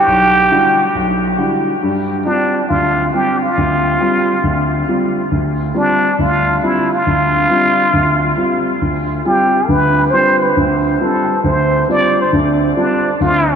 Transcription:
Already playing: G4
0.07 B1
0.51 D3 G3 E4 F#4
0.95 B1
1.38 D3 G3 E4 F#4
1.83 G2 G3
2.26 G3 C4 D4 F4
2.69 D2 F4
3.13 G3 C4 F4 G4
3.43 F4
3.58 D2
4.01 G3 C4 F4
4.44 D2
4.88 G3 C4 F4
5.32 D2
5.74 G3 C4 D4 F4
6.19 D2 F4
6.63 G3 C4 E4 F4
6.95 F4
7.07 D2
7.50 G3 C4 F4
7.93 D2
8.37 G3 C4 F4
8.82 D2
9.25 G3 C4 F4 G4
9.69 D2 D3 B4
10.11 G3 C4 F4 C5
10.43 B4
10.57 D2 D3
11.00 G3 C4 F4 A4
11.44 D2 C5
11.89 G3 C4 F4 D5
12.21 C5
12.33 D2 D3
12.77 G3 C4 D4 F4
13.20 D2 F4

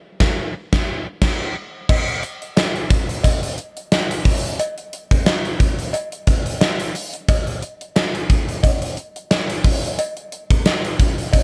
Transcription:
0.20 kick, snare
0.73 kick, snare
1.22 kick, snare, crash
1.89 kick, crash, cowbell
2.08 closed hi-hat
2.23 closed hi-hat
2.42 closed hi-hat
2.57 snare, tambourine, cowbell
2.76 closed hi-hat
2.90 kick, closed hi-hat
3.09 closed hi-hat
3.23 kick, closed hi-hat, cowbell
3.43 closed hi-hat
3.58 closed hi-hat
3.77 closed hi-hat
3.92 snare, tambourine, cowbell
4.11 closed hi-hat
4.25 kick, open hi-hat
4.44 closed hi-hat
4.59 closed hi-hat, cowbell
4.78 closed hi-hat
4.93 closed hi-hat
5.11 kick, closed hi-hat
5.26 snare, tambourine, cowbell
5.45 closed hi-hat
5.60 kick, closed hi-hat
5.79 closed hi-hat
5.93 closed hi-hat, cowbell
6.12 closed hi-hat
6.27 kick, closed hi-hat
6.46 closed hi-hat
6.61 snare, tambourine, cowbell
6.80 closed hi-hat
6.95 open hi-hat
7.13 closed hi-hat
7.29 kick, closed hi-hat, cowbell
7.47 closed hi-hat
7.62 closed hi-hat
7.81 closed hi-hat
7.96 snare, tambourine, cowbell
8.15 closed hi-hat
8.30 kick, closed hi-hat
8.49 closed hi-hat
8.63 kick, closed hi-hat, cowbell
8.82 closed hi-hat
8.97 closed hi-hat
9.16 closed hi-hat
9.31 snare, tambourine, cowbell
9.50 closed hi-hat
9.64 kick, open hi-hat
9.83 closed hi-hat
9.99 closed hi-hat, cowbell
10.17 closed hi-hat
10.32 closed hi-hat
10.51 kick, closed hi-hat
10.65 snare, tambourine, cowbell
10.85 closed hi-hat
11.00 kick, closed hi-hat
11.18 closed hi-hat
11.33 kick, closed hi-hat, cowbell

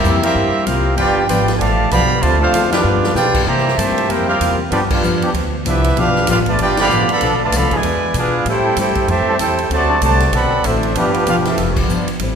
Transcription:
Already playing: G3 A#3 C4 E4 G4 A#4 E5
0.03 F2 C3 E3 G3 A#3 C4 E4 G4, hi-hat pedal
0.21 G3 A#3 C4 E4 G4 A#4 E5, ride
0.35 G2 C3 G3 A#3 E4, kick
0.63 C2 C3 G3 A#3 C4 F4 G4 A#4 F5, kick, hi-hat pedal, ride
0.67 A#3 E4
0.95 G1 G2 F3 B3 D4 F4 G4 B4 D5 G5, kick, ride
0.99 B3 D4
1.26 G#1 G2 F3 B3 D4 F4 G4 B4 D5 G5, kick, hi-hat pedal, ride
1.30 D4
1.48 snare, ride
1.57 A1 G2 D3 F3 A3 G4 D5 F5 G#5 A5, kick
1.61 F3 B3 D4, ride
1.89 B1 G2 D3 F3 B3 G4 D5 F5 B5, kick, hi-hat pedal, ride
1.94 D4
2.19 D2 C3 D3 F3 A3 F4 C5 D5 A5, kick, ride
2.24 C4 F4
2.38 F3 A3 C4 D4 F4 A4 C5 F5
2.53 F2 D3 A3 C4 F4, kick, hi-hat pedal, ride
2.69 B3 D4 F4 G4 B4 F5, snare, ride
2.73 F3
2.84 G2 F3 B3 D4
3.03 snare
3.13 G2 B2 F3 B3 D4 F4 G4 B4 D5 G5, snare, hi-hat pedal
3.18 D4
3.34 kick, crash
3.44 A#2 C3 E3 G3 A#3 C4 G4 C5 E5 A#5, kick
3.48 G3 A#3 E4
3.57 snare
3.68 snare
3.75 G2 A#2 C3 E3 G3 A3 A#3 G4 C5 E5 A5, kick, hi-hat pedal, ride
3.80 E4
3.98 ride
4.07 F2 C3 G3 A#3 E4 G4 A#4 C5 G5, kick, ride
4.12 E4
4.27 G3 A#3 C4 F4 G4 A#4 F5
4.40 E2 C3 G3 A#3 E4, kick, hi-hat pedal, ride
4.70 G2 F3 B3 D4 F4 G4 D5, kick, ride
4.90 B3 D4 F4 G4 B4 F5, kick, crash
5.02 F2 G2 F3 B3 D4, hi-hat pedal
5.22 F3 B3 D4 G4, ride
5.34 D2 G2 F3 B3 D4, kick, ride
5.64 C2 G2 F3 B3 D4 E4 G4 B4 E5, kick, hi-hat pedal, ride
5.84 ride
5.96 B1 G2 F3 B3 D4 F4 G4 B4 F5, kick, ride
6.15 snare
6.27 A1 G2 F3 B3 D4 F4 G4 B4 F5, kick, snare, hi-hat pedal, ride
6.46 A3 F4 B4 D5 A5, kick, ride
6.58 G1 G2 F3 B3 D4 F4 G4 B4, kick, ride
6.62 D5 G5
6.77 D3 F3 B3 G4 D5 B5, snare, ride
6.81 F5
6.89 A1 G2 F3 B3 D4, hi-hat pedal
7.08 D3 F3 B3 A4, muted upright bass stroke, ride
7.12 D5 F5 B5
7.20 B1 B2 F3 A3 B3 D4 A4, kick, ride
7.41 D3 F3 A3 F4 B4 D5 A5
7.51 C2 B2 D3 F3 A3 B3 D4, kick, hi-hat pedal, ride
7.56 A4 D5 F5 B5
7.71 B2 D3 E3 G#3 B3 D4 G#4, kick, ride
7.75 E4 B4 D5 G#5
7.83 E2 E3 B3 D4 G#4, kick, ride
8.14 B2 E3 B3 D4 F4 G#4, kick, hi-hat pedal, ride
8.18 D4 B4 F5
8.45 A2 G3 C4 E4 G4 A4 C5 G5, kick, ride
8.65 G3 C4 E4 A4
8.77 G2 A2 G3 C4 E4 G4 A4 C5 G5, kick, hi-hat pedal, ride
8.95 kick, ride
9.07 F2 A2 C3 E3 G3 A3 C4 E4 G4 C5 E5 A5, ride
9.27 G3 C4 E4 A4, muted upright bass stroke
9.39 E2 A2 G3 C4 E4 G4 A4 C5 G5, kick, hi-hat pedal, ride
9.58 ride
9.69 D2 C3 D3 F#3 A3 C4 F#4 C5 D5 A5, kick, ride
9.89 F#3 C4 D4 A4
10.01 C2 C3 D3 F#3 A3 C4 F#4 C5 D5 A5, kick, hi-hat pedal, ride
10.20 snare, ride
10.32 B1 D3 F#3 A3 B3 C4 F#4 A4 D5 F#5 B5, kick, ride
10.64 A1 D3 A3 C4 D4 E4 F#4 A4 C5 E5, kick, hi-hat pedal, ride
10.83 ride
10.95 G1 G2 F3 B3 D4 F4 G4 B4 F5, kick, ride
11.14 muted upright bass stroke, ride
11.26 E1 G2 F3 B3 D4 F4 G4 B4 F5, kick, hi-hat pedal, ride
11.45 C4 E4 F4 A4 E5, snare, ride
11.57 F1 G2 F3 B3 D4, kick, snare, ride
11.70 C#5
11.76 F3 B3 D4 F4 G4 D5, kick, crash
11.88 G1 G2 F3 B3 D4, hi-hat pedal
12.08 ride
12.19 A1 A2 G3 C4 E4, kick, ride

